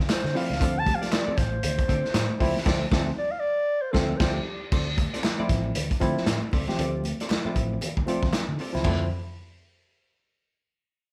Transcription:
0.00 muted hollow-body jazz guitar stroke, snare
0.09 C5, muted hollow-body jazz guitar stroke, snare, clap, closed hi-hat
0.24 D3, snare, high conga
0.34 F3 A3 C4 E4 F4 A4 D5 F5, open hi-hat
0.49 C#2, muted hollow-body jazz guitar stroke, snare, low conga
0.60 D2 F3 A3 C4 D4 F4 A4 D5, kick, closed hi-hat, muted conga
0.79 A5
0.86 F3 A3 C4 G4, muted hollow-body jazz guitar stroke, kick, closed hi-hat, muted conga, high conga
0.95 F5
1.02 C4 F4 A4 D5, snare, closed hi-hat
1.11 D5, snare, clap, closed hi-hat, muted conga, high conga
1.27 C4 F4 A4 D5, muted fingered electric bass stroke
1.37 A1 C5, muted hollow-body jazz guitar stroke, kick, snare, closed hi-hat, muted conga
1.52 muted hollow-body jazz guitar stroke, high conga
1.63 D2, muted hollow-body jazz guitar stroke, closed hi-hat, high conga, low conga
1.78 muted hollow-body jazz guitar stroke, kick, closed hi-hat
1.88 D3 C4 F4 A4 D5, kick, closed hi-hat, high conga
2.04 muted hollow-body jazz guitar stroke, snare
2.14 A2, muted hollow-body jazz guitar stroke, snare, clap, closed hi-hat, muted conga
2.29 high conga
2.40 C#2 F3 A3 C4 E4 F4 A4 D5, kick, open hi-hat
2.55 muted hollow-body jazz guitar stroke, snare, low conga
2.65 D2 F3 A3 C4 F4 A4 D5, kick, snare, crash
2.91 D2 F3 A3 C4 F4 A4 D5, kick, snare
3.18 D5
3.31 F5
3.40 D5
3.82 C5
3.92 D2 F3 A3 C4 F4 A4 D5, kick, snare
4.17 D2 F3 A3 C4 F4 A4 C5, kick, snare, crash
4.21 D5
4.33 G4
4.72 D2 C4 F4 A4 D5, kick, crash, muted conga
4.97 muted hollow-body jazz guitar stroke, kick, closed hi-hat, muted conga, high conga
5.14 C4 F4 A4 D5, snare, closed hi-hat
5.23 snare, clap, closed hi-hat, muted conga, high conga
5.38 F3 A3 C4 E4 F4 A4 D5, muted fingered electric bass stroke
5.49 A1, muted hollow-body jazz guitar stroke, kick, snare, closed hi-hat, muted conga
5.64 muted hollow-body jazz guitar stroke, high conga
5.75 D2, muted hollow-body jazz guitar stroke, closed hi-hat, muted conga, low conga
5.91 muted hollow-body jazz guitar stroke, kick, closed hi-hat
6.00 D3 F3 A3 C4 E4 F4 A4 D5, kick, closed hi-hat, muted conga, high conga
6.17 muted hollow-body jazz guitar stroke, snare
6.26 A2, muted hollow-body jazz guitar stroke, snare, clap, closed hi-hat
6.43 high conga
6.52 C#2 C4 F4 A4 D5, kick, open hi-hat, muted conga
6.67 F3 A3 C4 G4, muted hollow-body jazz guitar stroke, snare, low conga
6.78 D2 C4 F4 A4 D5, closed hi-hat
7.04 muted hollow-body jazz guitar stroke, closed hi-hat, muted conga, high conga
7.20 C4 F4 A4 D5, snare, closed hi-hat
7.30 snare, clap, closed hi-hat, high conga
7.44 F3 A3 C4 E4 F4 A4 D5, muted fingered electric bass stroke
7.55 A1, muted hollow-body jazz guitar stroke, kick, closed hi-hat, muted conga
7.70 muted hollow-body jazz guitar stroke, high conga
7.81 muted hollow-body jazz guitar stroke, closed hi-hat, low conga
7.97 D2, muted hollow-body jazz guitar stroke, kick
8.06 F3 A3 C4 F4 A4 D5, closed hi-hat, high conga
8.23 D2, muted hollow-body jazz guitar stroke, kick, snare
8.33 snare, clap, closed hi-hat, muted conga
8.49 D3, high conga
8.59 C4 F4 A4 D5, open hi-hat
8.73 C#2 F3 A3 C4 E4, snare, low conga
8.84 D2 F3 A3 C4 E4 F4 A4 D5, kick, clap, floor tom, crash, high conga

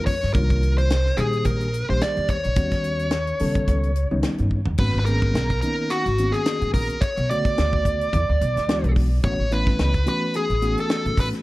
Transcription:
Already playing: F2 D#3 G#3 B3 C#4 F4
0.06 C#5, kick, open hi-hat
0.23 G2, snare
0.34 C2 D#3 G3 A#3 D4 F4 A#4, kick, closed hi-hat
0.50 kick, closed hi-hat
0.63 closed hi-hat
0.78 C5, closed hi-hat
0.90 snare, closed hi-hat
1.06 snare
1.17 A#2 D#3 G3 A#3 D4 G4 G#4, closed hi-hat
1.33 closed hi-hat
1.45 A#1 A#4, kick, closed hi-hat
1.60 closed hi-hat
1.74 closed hi-hat
1.89 A#1 D#3 G3 A#3 D4 G4 C5
2.01 D5, snare, closed hi-hat
2.17 D#2, closed hi-hat
2.28 C#5, kick, closed hi-hat
2.44 A#1, closed hi-hat
2.56 D#2 D#3 G3 B3 C#4 F#4, kick, closed hi-hat
2.71 kick, snare, closed hi-hat
2.84 closed hi-hat
2.99 closed hi-hat
3.11 snare, closed hi-hat
3.27 closed hi-hat
3.39 C#3 D#3 G3 B3 C#4 A4, open hi-hat
3.55 kick, closed hi-hat
3.68 C#2, kick, closed hi-hat
3.83 closed hi-hat
3.95 closed hi-hat
4.11 C#2 D#3 G3 B3 C#4 D#4
4.23 snare, closed hi-hat
4.38 G2, closed hi-hat
4.51 kick
4.66 D#2, floor tom
4.78 G#1 D#3 A#3 B3 C#4 F#4 B4, kick, crash
4.94 G#1
4.99 B4
5.05 D#3 A#3 B3 C#4 G#4 A#4, closed hi-hat
5.22 kick
5.34 B1, snare, closed hi-hat
5.50 kick, closed hi-hat
5.61 D#3 A#3 B3 C#4 D#4 A#4, closed hi-hat
5.90 F#4, closed hi-hat
6.06 G#1, closed hi-hat
6.18 D#3 A#3 B3 C#4 F#4, closed hi-hat
6.32 G#4, closed hi-hat
6.46 snare, closed hi-hat
6.61 G#2, closed hi-hat
6.74 A#1 A#4, kick, open hi-hat
6.89 closed hi-hat
7.01 C#5, muted upright bass stroke, kick, closed hi-hat
7.17 B1, closed hi-hat
7.30 C#3 D3 A3 B3 F#4 D5, closed hi-hat
7.45 muted upright bass stroke, kick, closed hi-hat
7.58 D2, snare, closed hi-hat
7.73 kick
7.85 kick, closed hi-hat
8.01 closed hi-hat
8.13 E2, kick, closed hi-hat
8.29 D2
8.41 B1, closed hi-hat
8.56 D2, snare, closed hi-hat
8.68 E3 G#3 B3 D4 F#4, snare, closed hi-hat
8.84 B1, closed hi-hat
8.96 kick, open hi-hat
9.24 A1 E3 A3 B3 C#4 F#4 C#5, kick, closed hi-hat
9.39 A1
9.51 E3 A3 B3 C#4 E4 B4, closed hi-hat
9.67 kick, snare
9.79 C#2, snare, closed hi-hat
9.94 kick, closed hi-hat
10.06 E3 A3 B3 C#4 F#4 B4, closed hi-hat
10.34 G#4, closed hi-hat
10.50 A1, closed hi-hat
10.62 E3 A3 B3 C#4 F#4, closed hi-hat
10.77 A4, closed hi-hat
10.90 snare, closed hi-hat
11.05 A2, closed hi-hat
11.17 A2 B4, kick, open hi-hat
11.33 snare, closed hi-hat

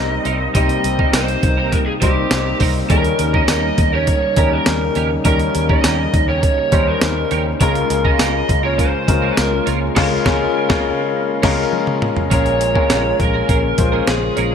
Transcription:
Already playing: C2 C3 G3 A#3 C4 D#4 A#4 D#5
0.10 muted clean electric guitar stroke
0.25 C2 C4 D#4 A#4, closed hi-hat
0.40 muted clean electric guitar stroke
0.54 C2 C3 G3 C4 D#4 G4 A#4 D#5, kick, closed hi-hat
0.69 muted clean electric guitar stroke, closed hi-hat
0.84 C2, muted clean electric guitar stroke, closed hi-hat
0.99 C4 D#4 A#4, kick
1.13 C2 C4 D#4 A#4 C5, snare, closed hi-hat, tambourine
1.28 muted clean electric guitar stroke, closed hi-hat
1.43 C2, muted clean electric guitar stroke, kick, closed hi-hat
1.57 C4 D#4 A#4
1.72 A#4, muted clean electric guitar stroke, kick, closed hi-hat
1.86 G#4, muted clean electric guitar stroke
2.01 C2 G3 C4 D#4 G4 A#4 C5, kick, closed hi-hat
2.16 muted clean electric guitar stroke
2.31 C2, snare, closed hi-hat, tambourine
2.45 muted clean electric guitar stroke
2.60 C2 C4 D#4 A#4, kick, open hi-hat
2.75 muted clean electric guitar stroke
2.89 D#2 C#3 D#3 G3 C#4 D#4 G4 G#4 A#4, kick, closed hi-hat
2.97 A#4
3.04 muted clean electric guitar stroke, closed hi-hat
3.19 D#2, muted clean electric guitar stroke, closed hi-hat
3.33 C#4 G4 A#4 D#5, kick
3.48 D#2 C#4 G4 A#4, snare, closed hi-hat, tambourine
3.63 muted clean electric guitar stroke
3.78 D#2, muted clean electric guitar stroke, kick, closed hi-hat
3.93 C#4 G4 A#4 C#5
4.07 C#5, muted clean electric guitar stroke, kick, closed hi-hat
4.22 muted clean electric guitar stroke
4.36 D#2 G3 C#4 D#4 G4 A#4, kick, closed hi-hat
4.52 A#4, muted clean electric guitar stroke
4.66 D#2, snare, closed hi-hat, tambourine
4.81 muted clean electric guitar stroke
4.95 D#2 C#4 G4 A#4, closed hi-hat
5.11 muted clean electric guitar stroke
5.25 D#2 D#3 G3 C#4 D#4 G4 A#4, kick, closed hi-hat
5.39 muted clean electric guitar stroke, closed hi-hat
5.54 D#2, muted clean electric guitar stroke, closed hi-hat
5.69 C#4 G4 A#4 D#5, kick
5.84 D#2 C#4 G4 A#4, snare, closed hi-hat, tambourine
5.99 muted clean electric guitar stroke
6.14 D#2, muted clean electric guitar stroke, kick, closed hi-hat
6.29 C#4 G4 A#4 C#5
6.43 C#5, muted clean electric guitar stroke, kick, closed hi-hat
6.58 muted clean electric guitar stroke
6.72 D#2 G3 C#4 D#4 G4 A#4 C5, kick, closed hi-hat
6.87 A#4, muted clean electric guitar stroke
7.01 D#2, snare, closed hi-hat, tambourine
7.17 muted clean electric guitar stroke
7.31 D#2 C#4 G4 A#4, closed hi-hat
7.46 muted clean electric guitar stroke
7.60 C#2 C#3 G#3 A#3 C#4 F4 A#4, kick, closed hi-hat
7.75 muted clean electric guitar stroke, closed hi-hat
7.90 C#2, muted clean electric guitar stroke, closed hi-hat
8.04 C#4 F4 A#4 D#5, kick
8.19 C#2 C#4 F4 A#4, snare, closed hi-hat, tambourine
8.34 muted clean electric guitar stroke
8.49 C#2, muted clean electric guitar stroke, kick, closed hi-hat
8.63 C#4 F4 A#4 C#5
8.78 C#4 F4 A#4 C5, kick, closed hi-hat
8.93 muted clean electric guitar stroke
9.07 C#2 G#3 C#4 F4 A#4, muted clean electric guitar stroke, kick, closed hi-hat
9.22 C#4 F4 A#4
9.37 C#2 A#4, snare, closed hi-hat, tambourine
9.52 muted clean electric guitar stroke
9.66 C#2 C#4 F4 A#4, closed hi-hat
9.81 muted clean electric guitar stroke
9.95 C#2 C#3 G#3 C#4 F4 A#4, kick, snare, crash
10.25 C#2 C#3 G#3 C#4 F4 A#4, kick, snare
10.69 C#2 C#3 G#3 C#4 F4 A#4, kick, snare
11.42 C#2 G#3 C#4 F4 A#4, kick, snare, crash
11.73 high tom
11.87 mid tom
12.02 mid tom
12.17 floor tom
12.30 A#1 A#2 C#3 G#3 A#3 C#4 F4 G#4 A#4 C#5, kick, closed hi-hat
12.46 muted clean electric guitar stroke, closed hi-hat
12.60 muted clean electric guitar stroke, closed hi-hat
12.75 G#3 C#4 F4 G#4 A#4, kick
12.90 A#1 C#4 G#4 A#4, snare, closed hi-hat
13.05 muted clean electric guitar stroke
13.19 A#1 A#4, muted clean electric guitar stroke, kick, closed hi-hat
13.33 C#4 G#4 A#4
13.48 A#1 C#4 G#4 A#4, kick, closed hi-hat
13.63 muted clean electric guitar stroke
13.77 A#1 G#3 C#4 F4 C5, muted clean electric guitar stroke, kick, closed hi-hat
13.92 C#4 G#4 A#4
14.07 A#1 G#4, snare, closed hi-hat
14.22 muted clean electric guitar stroke
14.37 A#1 C#4 G#4 A#4, closed hi-hat
14.51 muted clean electric guitar stroke

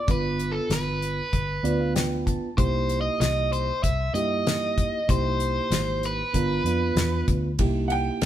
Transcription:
Already playing: D5
0.07 G1 B3 D4 F4 B4, kick, closed hi-hat
0.39 closed hi-hat
0.52 A4
0.70 G1 B4, snare, closed hi-hat
1.02 closed hi-hat
1.33 G1, kick, closed hi-hat
1.63 D2 B3 D4 F4 B4 D5, closed hi-hat
1.81 F5
1.95 G5, snare, closed hi-hat
2.26 A5, kick, closed hi-hat
2.57 C2 A#3 D#4 E4 G4 C5, kick, closed hi-hat
2.89 closed hi-hat
3.01 D#5
3.20 C2 D#5, snare, closed hi-hat
3.53 C5, closed hi-hat
3.83 C2 E5, kick, closed hi-hat
4.14 G2 A#3 D#4 E4 G4 D#5, closed hi-hat
4.47 snare, closed hi-hat
4.78 kick, closed hi-hat
5.08 C2 A#3 D#4 E4 G4 C5, kick, closed hi-hat
5.40 closed hi-hat
5.70 G#1, snare, closed hi-hat
6.03 B4, closed hi-hat
6.33 G1 B3 D4 F4 A#4, kick, closed hi-hat
6.64 F2 B3 D4 F4 B4, closed hi-hat
6.95 E2, snare, closed hi-hat
7.27 D2, kick, closed hi-hat
7.59 C2 A#3 D#4 E4 G4, kick, ride
7.88 F#5 G5, ride
8.21 C2, snare, ride

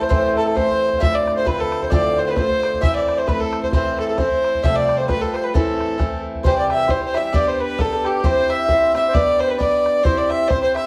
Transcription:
Already playing: A3 C4 E4
0.01 C5, bodhran
0.09 A2 E3 A3 C4 E4 C5, bodhran
0.35 A4, bodhran
0.44 A4
0.54 E3 A3 C4 E4 C5, bodhran
0.70 C5, bodhran
0.88 C5
0.93 bodhran
0.98 D2 A2 D3 A3 C4 F4 E5 F5, bodhran
1.12 D5
1.27 bodhran
1.35 C5
1.45 D3 A3 C4 F4 B4, bodhran
1.58 A4, bodhran
1.72 bodhran
1.82 C5, bodhran
1.90 D2 A2 D3 A3 C4 F4 D5, bodhran
2.16 C5
2.26 B4 C5
2.35 D3 A3 C4 F4 C5, bodhran
2.49 bodhran
2.63 D5, bodhran
2.73 bodhran
2.81 A2 E3 A3 C4 E4 E5, bodhran
2.94 D5
3.08 bodhran
3.17 C5
3.27 E3 A3 C4 E4 B4, bodhran
3.40 A4, bodhran
3.53 bodhran
3.63 C5, bodhran
3.72 A2 E3 A3 C4 E4 C5, bodhran
3.99 A4, bodhran
4.08 A4
4.18 E3 A3 C4 E4 C5, bodhran
4.31 bodhran
4.44 bodhran
4.54 bodhran
4.63 F2 C3 F3 G3 A3 F4 E5, bodhran
4.75 D5
4.89 bodhran
4.97 C5
5.08 F3 G3 A3 F4 B4, bodhran
5.21 A4, bodhran
5.34 C5, bodhran
5.44 B4
5.54 A2 E3 A3 C4 E4 A4, bodhran
5.80 bodhran
5.98 E3 A3 C4 E4, bodhran
6.12 bodhran
6.35 bodhran
6.43 C3 E3 G3 C4 G4 C5, bodhran
6.56 D5
6.70 E5, bodhran
6.78 E5
6.87 E3 G3 C4 C5, bodhran
6.91 G4
7.01 C5
7.05 C5
7.14 E3 G3 C4 G4 E5, bodhran
7.33 B3 D4 G4 B4 D5, bodhran
7.47 C5
7.59 B4
7.78 B3 D4 G4 A4 B4, bodhran
7.84 A4
7.93 A4
8.04 G4, bodhran
8.19 C5 D5
8.24 C4 E4 G4 C5, bodhran
8.50 E5, bodhran
8.68 C4 E4 G4 C5, bodhran
8.94 C4 E4 G4 C5 E5, bodhran
9.08 C5 D5
9.14 B3 D4 G4 B4 D5, bodhran
9.38 C5, bodhran
9.47 B4
9.51 B4
9.56 B3 D4 D5, bodhran
9.61 G4 B4
9.86 bodhran
10.03 C4 E4 G4 C5, bodhran
10.17 D5
10.27 E5, bodhran
10.46 C4 C5 D5
10.50 E4 G4 C5, bodhran
10.61 C5
10.75 E5, bodhran

